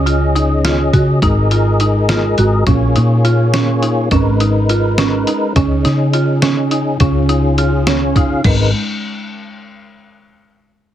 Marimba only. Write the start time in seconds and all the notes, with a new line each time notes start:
0.06 F4
0.36 D#4
0.65 F4
0.94 F#4
1.23 D#4
1.52 F4
1.80 D#4
2.09 F4
2.38 F#4
2.67 C#4
2.96 D#4
3.25 F4
3.54 C#4
3.83 D#4
4.12 C#4
4.41 D#4
4.70 F4
4.99 C#4
5.28 D#4
5.56 C#4
5.85 D#4
6.14 F4
6.42 C#4
6.71 D#4
7.00 C#4
7.29 D#4
7.58 F4
7.87 C#4
8.17 D#4
8.45 G#3